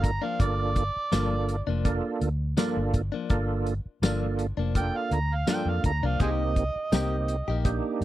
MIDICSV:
0, 0, Header, 1, 7, 480
1, 0, Start_track
1, 0, Key_signature, -2, "minor"
1, 0, Tempo, 725514
1, 263, Time_signature, 4, 2, 24, 8
1, 5322, End_track
2, 0, Start_track
2, 0, Title_t, "Harmonica"
2, 0, Program_c, 0, 22
2, 33, Note_on_c, 0, 82, 89
2, 155, Note_on_c, 0, 77, 83
2, 165, Note_off_c, 0, 82, 0
2, 259, Note_off_c, 0, 77, 0
2, 273, Note_on_c, 0, 74, 100
2, 1203, Note_off_c, 0, 74, 0
2, 3159, Note_on_c, 0, 79, 104
2, 3285, Note_on_c, 0, 77, 91
2, 3295, Note_off_c, 0, 79, 0
2, 3400, Note_on_c, 0, 82, 85
2, 3410, Note_off_c, 0, 77, 0
2, 3537, Note_on_c, 0, 77, 87
2, 3547, Note_off_c, 0, 82, 0
2, 3631, Note_off_c, 0, 77, 0
2, 3638, Note_on_c, 0, 79, 99
2, 3765, Note_on_c, 0, 77, 88
2, 3775, Note_off_c, 0, 79, 0
2, 3865, Note_off_c, 0, 77, 0
2, 3875, Note_on_c, 0, 82, 79
2, 4004, Note_on_c, 0, 77, 75
2, 4013, Note_off_c, 0, 82, 0
2, 4104, Note_off_c, 0, 77, 0
2, 4116, Note_on_c, 0, 68, 67
2, 4116, Note_on_c, 0, 72, 67
2, 4116, Note_on_c, 0, 75, 95
2, 4161, Note_off_c, 0, 72, 0
2, 4167, Note_off_c, 0, 68, 0
2, 5043, Note_off_c, 0, 75, 0
2, 5322, End_track
3, 0, Start_track
3, 0, Title_t, "Tonewheel organ"
3, 0, Program_c, 1, 16
3, 0, Note_on_c, 1, 58, 67
3, 0, Note_on_c, 1, 62, 64
3, 0, Note_on_c, 1, 65, 63
3, 0, Note_on_c, 1, 69, 80
3, 73, Note_off_c, 1, 58, 0
3, 74, Note_off_c, 1, 62, 0
3, 74, Note_off_c, 1, 65, 0
3, 74, Note_off_c, 1, 69, 0
3, 260, Note_on_c, 1, 62, 64
3, 262, Note_on_c, 1, 58, 70
3, 263, Note_on_c, 1, 65, 65
3, 264, Note_on_c, 1, 69, 76
3, 553, Note_off_c, 1, 58, 0
3, 553, Note_off_c, 1, 62, 0
3, 554, Note_off_c, 1, 65, 0
3, 555, Note_off_c, 1, 69, 0
3, 740, Note_on_c, 1, 58, 69
3, 743, Note_on_c, 1, 62, 59
3, 745, Note_on_c, 1, 65, 63
3, 746, Note_on_c, 1, 69, 77
3, 1033, Note_off_c, 1, 58, 0
3, 1034, Note_off_c, 1, 62, 0
3, 1035, Note_off_c, 1, 65, 0
3, 1036, Note_off_c, 1, 69, 0
3, 1220, Note_on_c, 1, 58, 82
3, 1223, Note_on_c, 1, 62, 75
3, 1224, Note_on_c, 1, 65, 75
3, 1227, Note_on_c, 1, 69, 91
3, 1513, Note_off_c, 1, 58, 0
3, 1514, Note_off_c, 1, 62, 0
3, 1515, Note_off_c, 1, 65, 0
3, 1517, Note_off_c, 1, 69, 0
3, 1703, Note_on_c, 1, 58, 94
3, 1706, Note_on_c, 1, 62, 88
3, 1709, Note_on_c, 1, 65, 87
3, 1710, Note_on_c, 1, 69, 103
3, 1995, Note_off_c, 1, 58, 0
3, 1996, Note_off_c, 1, 62, 0
3, 1997, Note_off_c, 1, 65, 0
3, 1998, Note_off_c, 1, 69, 0
3, 2182, Note_on_c, 1, 58, 83
3, 2183, Note_on_c, 1, 62, 80
3, 2185, Note_on_c, 1, 65, 76
3, 2187, Note_on_c, 1, 69, 87
3, 2474, Note_off_c, 1, 58, 0
3, 2475, Note_off_c, 1, 62, 0
3, 2476, Note_off_c, 1, 65, 0
3, 2476, Note_off_c, 1, 69, 0
3, 2662, Note_on_c, 1, 58, 88
3, 2663, Note_on_c, 1, 62, 86
3, 2666, Note_on_c, 1, 69, 97
3, 2667, Note_on_c, 1, 65, 83
3, 2954, Note_off_c, 1, 58, 0
3, 2955, Note_off_c, 1, 62, 0
3, 2956, Note_off_c, 1, 69, 0
3, 2957, Note_off_c, 1, 65, 0
3, 3146, Note_on_c, 1, 58, 64
3, 3146, Note_on_c, 1, 62, 60
3, 3150, Note_on_c, 1, 65, 59
3, 3151, Note_on_c, 1, 69, 71
3, 3436, Note_off_c, 1, 58, 0
3, 3436, Note_off_c, 1, 62, 0
3, 3438, Note_off_c, 1, 65, 0
3, 3438, Note_off_c, 1, 69, 0
3, 3622, Note_on_c, 1, 58, 71
3, 3625, Note_on_c, 1, 62, 64
3, 3626, Note_on_c, 1, 65, 67
3, 3627, Note_on_c, 1, 69, 77
3, 3914, Note_off_c, 1, 58, 0
3, 3915, Note_off_c, 1, 62, 0
3, 3916, Note_off_c, 1, 65, 0
3, 3916, Note_off_c, 1, 69, 0
3, 4099, Note_on_c, 1, 63, 62
3, 4100, Note_on_c, 1, 58, 67
3, 4100, Note_on_c, 1, 60, 60
3, 4104, Note_on_c, 1, 67, 75
3, 4392, Note_off_c, 1, 58, 0
3, 4392, Note_off_c, 1, 60, 0
3, 4392, Note_off_c, 1, 63, 0
3, 4395, Note_off_c, 1, 67, 0
3, 4578, Note_on_c, 1, 58, 68
3, 4579, Note_on_c, 1, 60, 62
3, 4581, Note_on_c, 1, 63, 61
3, 4581, Note_on_c, 1, 67, 75
3, 4871, Note_off_c, 1, 58, 0
3, 4872, Note_off_c, 1, 60, 0
3, 4873, Note_off_c, 1, 63, 0
3, 4873, Note_off_c, 1, 67, 0
3, 5059, Note_on_c, 1, 58, 84
3, 5060, Note_on_c, 1, 62, 75
3, 5061, Note_on_c, 1, 63, 74
3, 5064, Note_on_c, 1, 67, 90
3, 5322, Note_off_c, 1, 58, 0
3, 5322, Note_off_c, 1, 62, 0
3, 5322, Note_off_c, 1, 63, 0
3, 5322, Note_off_c, 1, 67, 0
3, 5322, End_track
4, 0, Start_track
4, 0, Title_t, "Clean electric guitar"
4, 0, Program_c, 2, 27
4, 143, Note_on_c, 2, 62, 53
4, 154, Note_on_c, 2, 58, 48
4, 164, Note_on_c, 2, 53, 41
4, 286, Note_off_c, 2, 62, 0
4, 292, Note_off_c, 2, 58, 0
4, 296, Note_off_c, 2, 53, 0
4, 740, Note_on_c, 2, 43, 72
4, 745, Note_on_c, 2, 53, 77
4, 749, Note_on_c, 2, 58, 80
4, 754, Note_on_c, 2, 62, 86
4, 890, Note_off_c, 2, 43, 0
4, 893, Note_off_c, 2, 53, 0
4, 895, Note_off_c, 2, 58, 0
4, 897, Note_off_c, 2, 62, 0
4, 1104, Note_on_c, 2, 62, 57
4, 1116, Note_on_c, 2, 58, 53
4, 1124, Note_on_c, 2, 53, 47
4, 1247, Note_off_c, 2, 62, 0
4, 1252, Note_off_c, 2, 58, 0
4, 1257, Note_off_c, 2, 53, 0
4, 1702, Note_on_c, 2, 43, 88
4, 1707, Note_on_c, 2, 53, 91
4, 1711, Note_on_c, 2, 58, 81
4, 1716, Note_on_c, 2, 62, 91
4, 1851, Note_off_c, 2, 43, 0
4, 1854, Note_off_c, 2, 53, 0
4, 1856, Note_off_c, 2, 58, 0
4, 1858, Note_off_c, 2, 62, 0
4, 2064, Note_on_c, 2, 62, 56
4, 2076, Note_on_c, 2, 58, 50
4, 2086, Note_on_c, 2, 53, 47
4, 2207, Note_off_c, 2, 62, 0
4, 2213, Note_off_c, 2, 58, 0
4, 2218, Note_off_c, 2, 53, 0
4, 2667, Note_on_c, 2, 43, 78
4, 2674, Note_on_c, 2, 53, 89
4, 2677, Note_on_c, 2, 58, 92
4, 2681, Note_on_c, 2, 62, 83
4, 2814, Note_off_c, 2, 43, 0
4, 2817, Note_off_c, 2, 53, 0
4, 2819, Note_off_c, 2, 58, 0
4, 2821, Note_off_c, 2, 62, 0
4, 3025, Note_on_c, 2, 62, 52
4, 3039, Note_on_c, 2, 58, 49
4, 3048, Note_on_c, 2, 53, 42
4, 3167, Note_off_c, 2, 62, 0
4, 3174, Note_off_c, 2, 58, 0
4, 3179, Note_off_c, 2, 53, 0
4, 3620, Note_on_c, 2, 43, 76
4, 3627, Note_on_c, 2, 53, 81
4, 3632, Note_on_c, 2, 58, 77
4, 3637, Note_on_c, 2, 62, 72
4, 3770, Note_off_c, 2, 43, 0
4, 3774, Note_off_c, 2, 53, 0
4, 3776, Note_off_c, 2, 58, 0
4, 3779, Note_off_c, 2, 62, 0
4, 3991, Note_on_c, 2, 62, 53
4, 4003, Note_on_c, 2, 58, 51
4, 4011, Note_on_c, 2, 53, 41
4, 4103, Note_off_c, 2, 58, 0
4, 4105, Note_off_c, 2, 62, 0
4, 4106, Note_on_c, 2, 48, 67
4, 4111, Note_on_c, 2, 58, 69
4, 4115, Note_off_c, 2, 53, 0
4, 4115, Note_on_c, 2, 63, 80
4, 4120, Note_on_c, 2, 67, 74
4, 4253, Note_off_c, 2, 48, 0
4, 4256, Note_off_c, 2, 58, 0
4, 4257, Note_off_c, 2, 63, 0
4, 4260, Note_off_c, 2, 67, 0
4, 4581, Note_on_c, 2, 48, 70
4, 4589, Note_on_c, 2, 58, 77
4, 4592, Note_on_c, 2, 63, 77
4, 4599, Note_on_c, 2, 67, 90
4, 4730, Note_off_c, 2, 48, 0
4, 4734, Note_off_c, 2, 58, 0
4, 4736, Note_off_c, 2, 63, 0
4, 4739, Note_off_c, 2, 67, 0
4, 4948, Note_on_c, 2, 67, 58
4, 4959, Note_on_c, 2, 63, 56
4, 4969, Note_on_c, 2, 58, 47
4, 5088, Note_off_c, 2, 67, 0
4, 5094, Note_off_c, 2, 63, 0
4, 5099, Note_off_c, 2, 58, 0
4, 5322, End_track
5, 0, Start_track
5, 0, Title_t, "Fingered electric bass"
5, 0, Program_c, 3, 33
5, 0, Note_on_c, 3, 31, 79
5, 116, Note_off_c, 3, 31, 0
5, 264, Note_on_c, 3, 31, 92
5, 585, Note_off_c, 3, 31, 0
5, 745, Note_on_c, 3, 31, 90
5, 1065, Note_off_c, 3, 31, 0
5, 1107, Note_on_c, 3, 29, 81
5, 1319, Note_off_c, 3, 29, 0
5, 1465, Note_on_c, 3, 38, 91
5, 1676, Note_off_c, 3, 38, 0
5, 1831, Note_on_c, 3, 31, 81
5, 2041, Note_off_c, 3, 31, 0
5, 2187, Note_on_c, 3, 31, 92
5, 2507, Note_off_c, 3, 31, 0
5, 2659, Note_on_c, 3, 31, 91
5, 2982, Note_off_c, 3, 31, 0
5, 3026, Note_on_c, 3, 29, 83
5, 3238, Note_off_c, 3, 29, 0
5, 3382, Note_on_c, 3, 38, 89
5, 3594, Note_off_c, 3, 38, 0
5, 3742, Note_on_c, 3, 41, 78
5, 3849, Note_off_c, 3, 41, 0
5, 3861, Note_on_c, 3, 38, 78
5, 3975, Note_off_c, 3, 38, 0
5, 3985, Note_on_c, 3, 36, 80
5, 4090, Note_off_c, 3, 36, 0
5, 4102, Note_on_c, 3, 36, 88
5, 4423, Note_off_c, 3, 36, 0
5, 4578, Note_on_c, 3, 36, 93
5, 4901, Note_off_c, 3, 36, 0
5, 4948, Note_on_c, 3, 34, 84
5, 5159, Note_off_c, 3, 34, 0
5, 5298, Note_on_c, 3, 43, 94
5, 5322, Note_off_c, 3, 43, 0
5, 5322, End_track
6, 0, Start_track
6, 0, Title_t, "Muted fingered electric bass strokes"
6, 637, Note_on_c, 9, 29, 36
6, 703, Note_off_c, 9, 29, 0
6, 2551, Note_on_c, 9, 29, 35
6, 2617, Note_off_c, 9, 29, 0
6, 4470, Note_on_c, 9, 29, 35
6, 4536, Note_off_c, 9, 29, 0
6, 5322, End_track
7, 0, Start_track
7, 0, Title_t, "Drums"
7, 24, Note_on_c, 9, 36, 78
7, 26, Note_on_c, 9, 42, 60
7, 90, Note_off_c, 9, 36, 0
7, 92, Note_off_c, 9, 42, 0
7, 263, Note_on_c, 9, 36, 107
7, 264, Note_on_c, 9, 42, 87
7, 330, Note_off_c, 9, 36, 0
7, 330, Note_off_c, 9, 42, 0
7, 501, Note_on_c, 9, 42, 57
7, 503, Note_on_c, 9, 36, 75
7, 567, Note_off_c, 9, 42, 0
7, 570, Note_off_c, 9, 36, 0
7, 744, Note_on_c, 9, 42, 74
7, 744, Note_on_c, 9, 54, 102
7, 746, Note_on_c, 9, 38, 102
7, 810, Note_off_c, 9, 42, 0
7, 810, Note_off_c, 9, 54, 0
7, 813, Note_off_c, 9, 38, 0
7, 984, Note_on_c, 9, 42, 64
7, 1050, Note_off_c, 9, 42, 0
7, 1223, Note_on_c, 9, 42, 77
7, 1225, Note_on_c, 9, 36, 80
7, 1289, Note_off_c, 9, 42, 0
7, 1291, Note_off_c, 9, 36, 0
7, 1465, Note_on_c, 9, 42, 59
7, 1531, Note_off_c, 9, 42, 0
7, 1702, Note_on_c, 9, 42, 73
7, 1702, Note_on_c, 9, 54, 104
7, 1705, Note_on_c, 9, 38, 102
7, 1769, Note_off_c, 9, 42, 0
7, 1769, Note_off_c, 9, 54, 0
7, 1771, Note_off_c, 9, 38, 0
7, 1942, Note_on_c, 9, 42, 53
7, 1945, Note_on_c, 9, 36, 78
7, 2008, Note_off_c, 9, 42, 0
7, 2011, Note_off_c, 9, 36, 0
7, 2181, Note_on_c, 9, 42, 81
7, 2185, Note_on_c, 9, 36, 113
7, 2247, Note_off_c, 9, 42, 0
7, 2251, Note_off_c, 9, 36, 0
7, 2425, Note_on_c, 9, 42, 54
7, 2491, Note_off_c, 9, 42, 0
7, 2666, Note_on_c, 9, 42, 78
7, 2666, Note_on_c, 9, 54, 107
7, 2669, Note_on_c, 9, 38, 104
7, 2733, Note_off_c, 9, 42, 0
7, 2733, Note_off_c, 9, 54, 0
7, 2735, Note_off_c, 9, 38, 0
7, 2903, Note_on_c, 9, 42, 63
7, 2969, Note_off_c, 9, 42, 0
7, 3144, Note_on_c, 9, 36, 80
7, 3144, Note_on_c, 9, 42, 81
7, 3210, Note_off_c, 9, 36, 0
7, 3210, Note_off_c, 9, 42, 0
7, 3384, Note_on_c, 9, 42, 65
7, 3450, Note_off_c, 9, 42, 0
7, 3621, Note_on_c, 9, 42, 81
7, 3621, Note_on_c, 9, 54, 101
7, 3624, Note_on_c, 9, 38, 107
7, 3687, Note_off_c, 9, 42, 0
7, 3687, Note_off_c, 9, 54, 0
7, 3690, Note_off_c, 9, 38, 0
7, 3863, Note_on_c, 9, 36, 78
7, 3863, Note_on_c, 9, 42, 62
7, 3929, Note_off_c, 9, 42, 0
7, 3930, Note_off_c, 9, 36, 0
7, 4101, Note_on_c, 9, 42, 84
7, 4103, Note_on_c, 9, 36, 110
7, 4167, Note_off_c, 9, 42, 0
7, 4169, Note_off_c, 9, 36, 0
7, 4342, Note_on_c, 9, 36, 73
7, 4342, Note_on_c, 9, 42, 57
7, 4408, Note_off_c, 9, 36, 0
7, 4408, Note_off_c, 9, 42, 0
7, 4581, Note_on_c, 9, 42, 81
7, 4581, Note_on_c, 9, 54, 104
7, 4584, Note_on_c, 9, 38, 109
7, 4647, Note_off_c, 9, 42, 0
7, 4647, Note_off_c, 9, 54, 0
7, 4650, Note_off_c, 9, 38, 0
7, 4819, Note_on_c, 9, 42, 67
7, 4885, Note_off_c, 9, 42, 0
7, 5060, Note_on_c, 9, 42, 82
7, 5061, Note_on_c, 9, 36, 85
7, 5126, Note_off_c, 9, 42, 0
7, 5128, Note_off_c, 9, 36, 0
7, 5322, End_track
0, 0, End_of_file